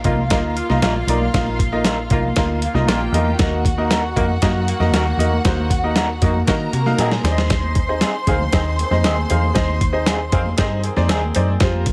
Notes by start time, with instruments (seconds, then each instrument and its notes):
Already playing: string section F4 F5
0.04 picked electric bass C2, grand piano A#3 D#4 F4 A#4 D#5, horn section A#3 F4, kick, closed hi-hat, muted conga, low conga
0.17 high conga, low conga
0.30 picked electric bass D2, horn section A#3 F4, grand piano A#3 D#4 F4 A#4 D#5, kick, snare, closed hi-hat
0.56 horn section A#3 F4, closed hi-hat
0.69 picked electric bass C2, grand piano A#3 D#4 F4 A#4 D#5, snare, high conga
0.82 picked electric bass A#1, horn section A#3 F4, clean electric guitar D#4 F4 A#4, snare, closed hi-hat
0.96 high conga
1.07 picked electric bass B1, grand piano A#3 D#4 F4 A#4 D5, closed hi-hat, low conga
1.20 high conga
1.34 picked electric bass A#1, grand piano A#3 D#4 F4 A#4 F5, kick, snare, closed hi-hat
1.46 high conga
1.59 kick, closed hi-hat, muted conga
1.72 grand piano A#3 D#4 F4 A#4 D#5
1.85 clean electric guitar D#4 F4 A#4, snare, closed hi-hat, muted conga
2.10 picked electric bass C2, horn section A#3 F4, grand piano A#3 D#4 F4 A#4 D#5, kick, closed hi-hat, muted conga, low conga
2.23 high conga, low conga
2.36 picked electric bass D2, horn section A#3 F4, grand piano A#3 D#4 F4 A#4 F5, kick, snare, closed hi-hat
2.62 horn section A#3 F4, closed hi-hat, muted conga
2.74 picked electric bass C2, grand piano A#3 D#4 F4 A#4 D#5, snare, high conga
2.87 picked electric bass A#1, horn section A#3 F4, clean electric guitar D#4 F4 A#4, string section G4 G5, snare, closed hi-hat
3.02 high conga
3.12 picked electric bass E2, grand piano A#3 D#4 F4 A#4 D#5, closed hi-hat, muted conga, low conga
3.27 high conga
3.38 picked electric bass D#2, grand piano A#3 D#4 F#4 A#4 D#5, string section F#4 F#5, kick, snare, closed hi-hat, muted conga
3.52 high conga
3.65 kick, closed hi-hat, muted conga
3.78 grand piano A#3 D#4 F#4 A#4 D#5
3.91 clean electric guitar D#4 F#4 A#4, snare, closed hi-hat, muted conga
4.16 picked electric bass F2, horn section D#3 A#3 F#4, grand piano A#3 D#4 F#4 A#4 D#5, kick, closed hi-hat, muted conga, low conga
4.29 high conga, low conga
4.42 picked electric bass F#2, horn section D#3 A#3 F#4, grand piano A#3 D#4 F#4 A#4 D#5, kick, snare, closed hi-hat
4.67 horn section D#3 A#3 F#4, closed hi-hat
4.80 picked electric bass F2, grand piano A#3 D#4 F#4 A#4 D#5, snare, high conga
4.92 picked electric bass D#2, horn section D#3 A#3 F#4, clean electric guitar D#4 F#4 A#4, snare, closed hi-hat
5.08 high conga
5.17 picked electric bass E2, grand piano A#3 D#4 F#4 A#4 D#5, closed hi-hat, low conga
5.32 high conga
5.45 picked electric bass D#2, grand piano A#3 D#4 F#4 A#4 C5, kick, snare, closed hi-hat
5.58 high conga
5.70 kick, closed hi-hat
5.84 grand piano A#3 D#4 F#4 A#4 D#5
5.96 clean electric guitar D#4 F#4 A#4, snare, closed hi-hat, muted conga
6.22 picked electric bass F2, horn section D#3 A#3 F#4, grand piano A#3 D#4 F#4 A#4 D#5, kick, closed hi-hat, muted conga, low conga
6.34 high conga, low conga
6.47 picked electric bass D#3, horn section D#3 A#3 F#4, grand piano A#3 D#4 F#4 A#4 D#5, string section A#4 A#5, kick, snare, closed hi-hat
6.73 picked electric bass C3, horn section D#3 A#3 F#4, closed hi-hat
6.86 grand piano A#3 D#4 F#4 A#4 F5, snare, high conga
6.98 picked electric bass A#2, horn section D#3 C4 G#4, clean electric guitar D#4 F#4 A#4, snare, closed hi-hat
7.12 snare, high conga
7.24 picked electric bass D#2, grand piano C4 D#4 G#4 C5 D5, string section C5 C6, snare, closed hi-hat, low conga
7.31 grand piano D#5
7.37 snare, high conga
7.50 kick, snare, closed hi-hat
7.63 high conga
7.75 kick, closed hi-hat
7.89 grand piano C4 D#4 G#4 C5 D#5
8.01 clean electric guitar C4 D#4 G#4, snare, closed hi-hat, muted conga
8.27 picked electric bass D2, horn section D#3 C4 G#4, grand piano C4 D#4 G#4 C5 F5, kick, closed hi-hat, muted conga, low conga
8.39 high conga, low conga
8.52 picked electric bass D#2, horn section D#3 C4 G#4, grand piano C4 D#4 G#4 C5 D#5, kick, snare, closed hi-hat
8.78 horn section D#3 C4 G#4, closed hi-hat, muted conga
8.91 picked electric bass F2, grand piano C4 D#4 G#4 C5 D#5, snare, high conga
9.04 picked electric bass D#2, horn section D#3 C4 G#4, clean electric guitar C4 D#4 G#4, snare, closed hi-hat
9.18 high conga
9.30 picked electric bass E2, grand piano C4 D#4 G#4 C5 F5, closed hi-hat, low conga
9.43 high conga
9.54 picked electric bass D#2, grand piano C4 D#4 G#4 C5 D#5, kick, snare, closed hi-hat
9.68 high conga
9.81 kick, closed hi-hat
9.93 grand piano C4 D#4 G#4 C5 D#5
10.06 clean electric guitar C4 D#4 G#4, snare, closed hi-hat, muted conga
10.32 picked electric bass F2, horn section D#3 C4 G#4, grand piano C4 D#4 G#4 C5 F5, kick, closed hi-hat, muted conga, low conga
10.46 high conga, low conga
10.57 picked electric bass G2, horn section D#3 C4 G#4, grand piano C4 D#4 G#4 C5 D#5, kick, snare, closed hi-hat
10.83 horn section D#3 C4 G#4, closed hi-hat
10.97 picked electric bass F2, grand piano C4 D#4 G#4 C5 D5, snare, high conga
11.08 picked electric bass D#2, horn section D#3 C4 G#4, clean electric guitar C4 D#4 G#4, snare, closed hi-hat, muted conga
11.24 high conga
11.35 picked electric bass F#2, grand piano C4 D#4 G#4 C5 D5, closed hi-hat, low conga
11.48 high conga
11.60 picked electric bass F2, grand piano C4 F4 G4 G#4 C5, string section A#4 A#5, kick, snare, closed hi-hat
11.74 high conga
11.86 kick, closed hi-hat